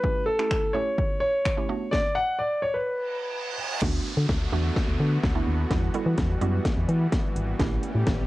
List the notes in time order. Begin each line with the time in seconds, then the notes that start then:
Already playing: B4
0.04 A3 C#4 E4 G4, kick
0.26 A4
0.39 A3 C#4 E4 G4, finger snap
0.51 finger snap, kick
0.73 A3 C#4 E4 G4 C#5
0.98 kick
1.20 C#5
1.45 finger snap, kick
1.57 A3 C#4 E4 G4
1.69 A3 B3 D4 F#4
1.91 D5, kick, snare
2.15 F#5
2.39 D5
2.62 C#5
2.74 B4
2.87 reverse cymbal
3.81 D2 D3 A3 B3 D4 F#4, kick, snare, crash, downlifter, riser
4.17 D3
4.29 D2, kick, snare
4.52 E2 A3 B3 D4 F#4
4.76 kick, snare
4.88 D2
5.00 D3
5.23 D2, kick, snare
5.35 A3 B3 D4 E4
5.47 D#2
5.70 E2 E3 G3 B3 E4 F#4, kick, snare, closed hi-hat
5.94 G3 B3 E4 A4, closed hi-hat
6.06 E3
6.18 E2, kick, snare, closed hi-hat
6.41 F#2 G3 B3 E4 F#4, closed hi-hat
6.65 kick, snare, closed hi-hat
6.77 E2
6.89 E3, closed hi-hat
7.12 kick, snare, closed hi-hat
7.36 G#1, closed hi-hat
7.59 A1 G3 A3 C#4 E4 G4, kick, snare, closed hi-hat
7.83 closed hi-hat
7.95 A2
8.07 A1, kick, snare, closed hi-hat